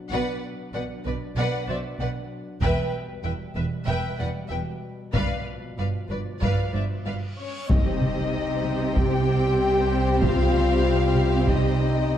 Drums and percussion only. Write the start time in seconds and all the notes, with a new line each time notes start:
2.61 taiko
5.14 taiko
6.42 taiko
7.70 taiko
8.01 taiko mid
8.65 taiko mid
8.96 taiko
10.22 taiko
10.53 taiko mid
11.16 taiko mid
11.47 taiko